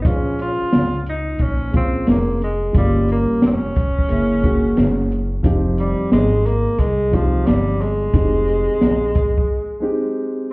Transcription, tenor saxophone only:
0.02 0.08 D#4 medium
0.07 0.40 C#4 loud
0.42 1.04 F4 loud
1.09 1.44 D#4 medium
1.42 1.75 C#4 loud
1.77 2.07 C4 medium
2.10 2.40 A#3 medium
2.44 2.74 G#3 medium
2.77 3.07 G3 medium
3.12 3.41 A#3 medium
3.46 5.08 C#4 medium
5.79 6.10 G3 medium
6.13 6.48 G#3 loud
6.46 6.81 A#3 loud
6.80 7.16 G#3 loud
7.14 7.48 F3 medium
7.47 7.83 G3 medium
7.81 10.17 G#3 medium

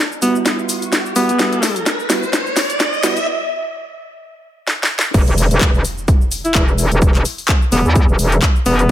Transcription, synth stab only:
0.22 1.13 G3 medium
0.22 1.13 B3 medium
0.22 1.13 E4 medium
0.22 1.13 F#4 medium
1.16 1.31 G3 medium
1.16 1.31 B3 medium
1.16 1.31 E4 medium
1.16 1.31 F#4 loud
1.39 1.61 G3 loud
1.39 1.61 B3 medium
1.39 1.61 E4 medium
1.39 1.61 F#4 loud
2.10 2.24 G3 medium
2.10 2.24 B3 medium
2.10 2.24 E4 medium
2.10 2.24 F#4 medium
3.03 3.18 G3 medium
3.03 3.18 B3 medium
3.03 3.18 E4 medium
3.03 3.18 F#4 loud

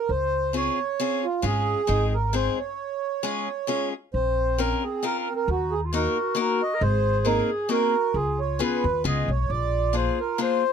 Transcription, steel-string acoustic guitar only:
0.53 0.78 C4 medium
0.53 0.78 C#4 medium
0.53 0.78 F4 soft
0.53 0.78 G#4 medium
1.00 1.23 C4 medium
1.00 1.23 C#4 medium
1.00 1.24 F4 medium
1.00 1.24 G#4 medium
1.42 1.80 G#3 medium
1.42 1.80 C#4 medium
1.42 1.80 F4 medium
1.42 1.80 G#4 medium
1.87 2.12 G#3 medium
1.87 2.12 C4 soft
1.87 2.12 D#4 medium
1.87 2.13 G#4 medium
2.33 2.57 G#3 medium
2.33 2.58 C4 medium
2.33 2.58 D#4 medium
2.33 2.58 G#4 medium
3.23 3.47 G#3 medium
3.23 3.48 C#4 medium
3.23 3.48 F4 medium
3.23 3.48 G#4 medium
3.67 3.92 G#3 medium
3.67 3.92 C#4 medium
3.67 3.93 F4 medium
3.67 3.93 G#4 medium
4.58 4.83 C4 medium
4.58 4.83 C#4 medium
4.58 4.83 F4 medium
4.58 4.83 A#4 medium
5.03 5.27 C4 medium
5.03 5.27 C#4 medium
5.03 5.28 F4 medium
5.03 5.28 A#4 medium
5.93 6.16 A#3 medium
5.93 6.17 D#4 medium
5.93 6.17 F#4 medium
5.93 6.17 A#4 medium
6.35 6.60 A#3 medium
6.35 6.60 D#4 medium
6.35 6.60 F#4 medium
6.35 6.60 A#4 medium
7.25 7.49 A#3 medium
7.25 7.49 C4 medium
7.25 7.49 D#4 medium
7.25 7.50 G#4 medium
7.69 7.94 A#3 medium
7.69 7.94 C4 medium
7.69 7.94 D#4 medium
7.69 7.94 G#4 medium
8.59 8.83 B3 medium
8.59 8.84 C#4 medium
8.59 8.84 F4 medium
8.59 8.84 G#4 medium
9.04 9.28 B3 medium
9.04 9.28 C#4 medium
9.04 9.29 F4 medium
9.04 9.29 G#4 medium
9.93 10.17 A#3 medium
9.93 10.18 D4 soft
9.93 10.18 F4 soft
9.93 10.18 G#4 medium
10.38 10.62 A#3 medium
10.38 10.62 D4 medium
10.38 10.63 F4 medium
10.38 10.63 G#4 medium

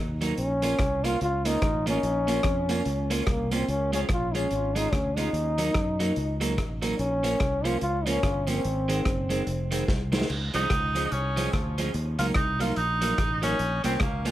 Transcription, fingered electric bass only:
0.00 0.31 D#2 medium
0.38 0.73 A#1 loud
0.80 1.14 C2 medium
1.21 1.56 C#2 medium
1.62 1.97 A1 loud
2.03 2.38 A#1 loud
2.44 2.80 F2 medium
2.86 3.21 C#2 medium
3.27 3.62 C2 medium
3.68 4.04 C#2 loud
4.09 4.45 A#1 medium
4.51 4.86 G#1 medium
4.93 5.28 D2 medium
5.33 5.68 D#2 loud
5.75 6.10 F#2 medium
6.17 6.58 C#2 medium
6.58 6.93 A1 medium
6.99 7.34 A#1 loud
7.41 7.76 C2 medium
7.82 8.17 C#2 medium
8.23 8.58 G1 loud
8.65 9.00 G#1 loud
9.06 9.41 F#1 medium
9.47 9.82 F1 medium
9.89 10.23 C2 medium
10.30 10.51 C#2 loud
10.55 10.68 C2 medium
10.71 11.06 C#2 medium
11.12 11.47 C2 loud
11.53 11.88 D2 medium
11.94 12.16 D#2 loud
12.19 12.33 C#2 medium
12.36 12.71 C2 medium
12.77 13.12 A#1 medium
13.18 13.53 A1 medium
13.60 13.81 A#1 loud
13.84 13.98 C2 medium
14.01 14.31 C#2 medium

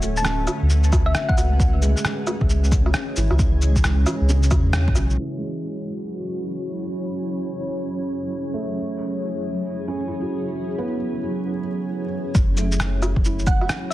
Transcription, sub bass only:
0.00 0.47 D1 medium
0.62 1.14 D2 medium
1.37 1.95 C#2 medium
2.41 2.93 C#2 medium
3.17 3.30 G#1 medium
3.31 4.05 C#2 medium
4.21 4.53 C#2 medium
4.51 4.95 E2 medium
4.96 5.17 B1 loud
12.35 13.14 F#1 loud
13.16 13.68 F#1 medium

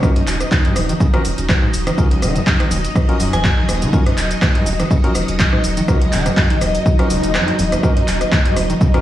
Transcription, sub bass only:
0.27 0.43 D#1 loud
0.76 0.92 D#1 medium
1.25 1.33 D#1 medium
1.38 1.53 D#1 loud
1.74 1.90 D#1 medium
2.22 2.39 D#1 loud
2.71 2.87 D#1 medium
3.20 3.28 D#1 medium
3.33 3.48 D#1 loud
3.69 3.85 D#1 medium
4.17 4.34 D#1 loud
4.66 4.82 D#1 loud
5.15 5.23 D#1 medium
5.28 5.43 D#1 loud
5.64 5.80 D#1 loud
6.13 6.29 D#1 loud
6.61 6.78 D#1 loud
7.10 7.19 D#1 medium
7.23 7.38 D#1 loud
7.59 7.75 D#1 medium
8.08 8.24 D#1 loud
8.56 8.73 D#1 loud

